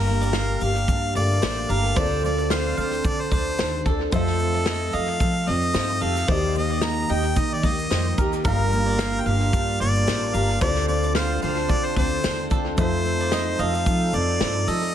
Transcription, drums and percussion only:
0.07 shaker
0.22 shaker
0.33 snare, shaker
0.61 shaker
0.76 shaker
0.88 kick, shaker
1.15 shaker
1.31 shaker
1.42 snare, shaker
1.69 shaker
1.96 kick, shaker
2.24 shaker
2.39 shaker
2.50 snare, shaker
2.77 shaker
2.93 shaker
3.04 kick, shaker
3.32 kick, shaker
3.58 snare, shaker
3.85 kick, shaker
4.12 kick, shaker
4.27 snare
4.39 shaker
4.66 snare, shaker
4.93 shaker
5.20 kick, shaker
5.47 shaker
5.62 shaker
5.74 snare, shaker
6.01 shaker
6.16 shaker
6.28 kick, shaker
6.55 shaker
6.81 snare, shaker
7.09 shaker
7.36 kick, shaker
7.63 kick, shaker
7.79 shaker
7.90 snare, shaker
8.18 kick, shaker
8.33 shaker
8.44 kick, shaker
8.72 shaker
8.99 snare, shaker
9.26 shaker
9.53 kick, shaker
9.80 shaker
9.95 shaker
10.07 snare, shaker
10.34 shaker
10.61 kick, shaker
10.75 snare
10.88 shaker
11.03 shaker
11.15 snare, shaker
11.42 shaker
11.69 kick, shaker
11.96 kick, shaker
12.23 snare, shaker
12.50 kick, shaker
12.77 kick, shaker
13.05 shaker
13.20 shaker
13.32 snare, shaker
13.59 shaker
13.74 shaker
13.86 kick, shaker
14.13 shaker
14.40 snare, shaker
14.68 shaker

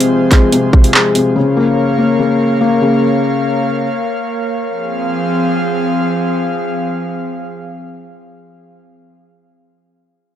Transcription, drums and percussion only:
0.00 closed hi-hat
0.31 kick, clap, closed hi-hat
0.52 closed hi-hat
0.73 kick
0.84 closed hi-hat
0.94 clap
1.15 closed hi-hat

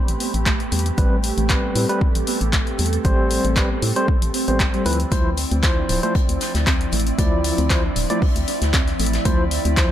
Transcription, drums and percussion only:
0.08 closed hi-hat
0.20 open hi-hat
0.34 closed hi-hat
0.46 kick, clap, closed hi-hat
0.60 closed hi-hat
0.72 open hi-hat
0.79 closed hi-hat
0.86 closed hi-hat
0.98 kick, closed hi-hat
1.24 open hi-hat
1.38 closed hi-hat
1.50 kick, clap, closed hi-hat
1.75 open hi-hat
1.89 closed hi-hat
2.01 kick
2.15 closed hi-hat
2.27 open hi-hat
2.41 closed hi-hat
2.53 kick, clap, closed hi-hat
2.67 closed hi-hat
2.79 open hi-hat
2.86 closed hi-hat
2.93 closed hi-hat
3.05 kick, closed hi-hat
3.31 open hi-hat
3.45 closed hi-hat
3.56 kick, clap, closed hi-hat
3.82 open hi-hat
3.96 closed hi-hat
4.08 kick
4.22 closed hi-hat
4.34 open hi-hat
4.48 closed hi-hat
4.60 kick, clap, closed hi-hat
4.74 closed hi-hat
4.86 open hi-hat
4.93 closed hi-hat
5.00 closed hi-hat
5.12 kick, closed hi-hat
5.37 closed hi-hat, open hi-hat
5.51 closed hi-hat
5.63 kick, snare, clap, closed hi-hat
5.89 closed hi-hat, open hi-hat
6.03 closed hi-hat
6.15 kick, closed hi-hat
6.29 closed hi-hat
6.41 snare, closed hi-hat, open hi-hat
6.55 snare, closed hi-hat
6.67 kick, snare, clap, closed hi-hat
6.81 closed hi-hat
6.92 closed hi-hat, open hi-hat
7.00 closed hi-hat
7.07 closed hi-hat
7.18 kick, closed hi-hat
7.44 closed hi-hat, open hi-hat
7.58 closed hi-hat
7.70 kick, snare, clap, closed hi-hat
7.96 closed hi-hat, open hi-hat
8.10 closed hi-hat
8.22 kick, open hi-hat
8.36 closed hi-hat
8.48 closed hi-hat, open hi-hat
8.62 snare, closed hi-hat
8.73 kick, snare, clap, closed hi-hat
8.88 snare, closed hi-hat
9.00 closed hi-hat, open hi-hat
9.06 closed hi-hat
9.13 snare, closed hi-hat
9.25 kick, closed hi-hat
9.51 closed hi-hat, open hi-hat
9.65 closed hi-hat
9.76 kick, snare, clap, closed hi-hat

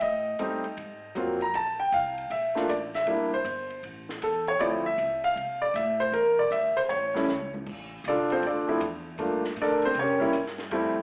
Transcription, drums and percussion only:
0.01 ride
0.39 hi-hat pedal, ride
0.64 ride
0.78 ride
1.16 hi-hat pedal, ride
1.41 ride
1.54 ride
1.92 hi-hat pedal, ride
2.18 ride
2.30 ride
2.56 snare
2.69 hi-hat pedal, ride
2.94 snare, ride
3.07 ride
3.45 hi-hat pedal, ride
3.70 ride
3.84 ride
4.09 snare
4.22 hi-hat pedal, ride
4.47 ride
4.60 ride
4.86 kick
4.98 hi-hat pedal, ride
5.24 ride
5.37 ride
5.76 hi-hat pedal, ride
6.01 ride
6.13 ride
6.52 hi-hat pedal, ride
6.77 ride
6.90 ride
7.15 snare
7.28 snare, hi-hat pedal
7.41 high tom
7.54 high tom
7.67 kick, crash
8.05 hi-hat pedal, ride
8.30 ride
8.43 ride
8.81 hi-hat pedal, ride
9.19 ride
9.44 snare
9.57 hi-hat pedal, ride
9.82 ride
9.94 ride
10.33 hi-hat pedal, ride
10.46 snare
10.58 snare, ride
10.71 ride

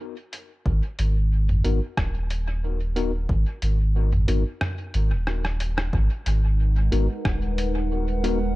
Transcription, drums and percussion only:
0.33 closed hi-hat
0.66 kick
0.99 closed hi-hat
1.49 mid tom
1.65 closed hi-hat
1.97 kick, cross-stick
2.30 closed hi-hat
2.96 closed hi-hat
3.29 kick
3.62 closed hi-hat
4.13 mid tom
4.28 closed hi-hat
4.61 cross-stick, mid tom
4.94 closed hi-hat
5.27 cross-stick
5.45 cross-stick
5.60 closed hi-hat
5.78 cross-stick
5.93 kick
6.26 closed hi-hat
6.92 closed hi-hat
7.25 kick, cross-stick
7.58 closed hi-hat
8.24 closed hi-hat

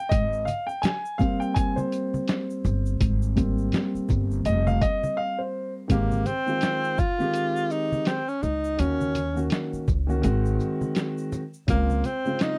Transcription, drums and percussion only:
0.11 kick, closed hi-hat, shaker
0.33 shaker
0.47 closed hi-hat, high conga, shaker
0.69 shaker
0.83 snare, closed hi-hat, high conga, low conga, shaker
1.05 shaker
1.19 kick, low conga, shaker
1.42 shaker
1.56 kick, closed hi-hat, shaker
1.78 high conga, shaker
1.92 closed hi-hat, shaker
2.14 high conga, shaker
2.28 snare, closed hi-hat, shaker
2.50 shaker
2.65 low conga, shaker
2.86 shaker
3.01 kick, closed hi-hat, shaker
3.22 shaker
3.37 kick, closed hi-hat, high conga, shaker
3.58 shaker
3.72 snare, closed hi-hat, high conga, low conga, shaker
3.95 shaker
4.09 kick, low conga, shaker
4.31 shaker
4.45 closed hi-hat, shaker
4.67 high conga, shaker
4.82 kick, closed hi-hat, shaker
5.04 high conga, shaker
5.90 kick, closed hi-hat, shaker
6.11 high conga, shaker
6.26 closed hi-hat, high conga, shaker
6.47 shaker
6.61 snare, closed hi-hat, shaker
6.84 shaker
6.98 kick, low conga, shaker
7.20 shaker
7.33 closed hi-hat, shaker
7.56 shaker
7.70 shaker
7.92 high conga, shaker
8.05 snare, closed hi-hat, shaker
8.28 shaker
8.43 low conga, shaker
8.64 shaker
8.79 closed hi-hat, shaker
9.01 high conga, shaker
9.15 closed hi-hat, high conga, shaker
9.37 shaker
9.50 snare, closed hi-hat, shaker
9.73 shaker
9.88 kick, low conga, shaker
10.09 shaker
10.23 closed hi-hat, shaker
10.45 shaker
10.60 shaker
10.81 high conga, shaker
10.95 snare, closed hi-hat, shaker
11.18 shaker
11.32 low conga, shaker
11.54 shaker
11.68 kick, closed hi-hat, shaker
11.90 high conga, shaker
12.04 closed hi-hat, high conga, shaker
12.26 shaker
12.39 snare, closed hi-hat, shaker

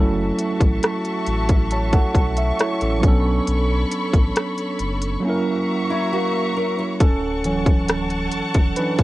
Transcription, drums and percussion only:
0.39 closed hi-hat
0.61 kick, closed hi-hat
0.83 cross-stick, closed hi-hat
1.05 closed hi-hat
1.26 closed hi-hat
1.49 kick, closed hi-hat
1.71 closed hi-hat
1.93 kick, closed hi-hat
2.15 kick, closed hi-hat
2.37 closed hi-hat
2.59 cross-stick, closed hi-hat
2.81 closed hi-hat
3.03 kick, closed hi-hat
3.47 closed hi-hat
3.91 closed hi-hat
4.13 kick, closed hi-hat
4.36 cross-stick, closed hi-hat
4.58 closed hi-hat
4.79 closed hi-hat
5.02 closed hi-hat
7.00 kick, closed hi-hat
7.44 closed hi-hat
7.66 kick, closed hi-hat
7.89 cross-stick, closed hi-hat
8.10 closed hi-hat
8.32 closed hi-hat
8.55 kick, closed hi-hat
8.76 closed hi-hat
8.99 kick, closed hi-hat

